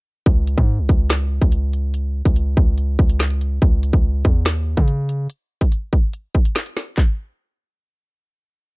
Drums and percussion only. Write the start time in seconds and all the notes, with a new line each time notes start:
0.26 kick, closed hi-hat
0.47 closed hi-hat
0.58 kick
0.89 kick, closed hi-hat
1.10 snare, clap, closed hi-hat
1.42 kick, closed hi-hat
1.52 closed hi-hat
1.73 closed hi-hat
1.94 closed hi-hat
2.25 kick, closed hi-hat
2.36 closed hi-hat
2.57 kick
2.78 closed hi-hat
2.99 kick
3.10 closed hi-hat
3.20 snare, clap
3.30 closed hi-hat
3.41 closed hi-hat
3.62 kick, closed hi-hat
3.83 closed hi-hat
3.93 kick
4.25 kick, closed hi-hat
4.46 snare, clap, closed hi-hat
4.77 kick, closed hi-hat
4.88 closed hi-hat
5.09 closed hi-hat
5.30 closed hi-hat
5.61 kick, closed hi-hat
5.72 closed hi-hat
5.93 kick
6.13 closed hi-hat
6.35 kick
6.45 closed hi-hat
6.56 snare, clap
6.66 closed hi-hat
6.77 snare, open hi-hat
6.98 kick, clap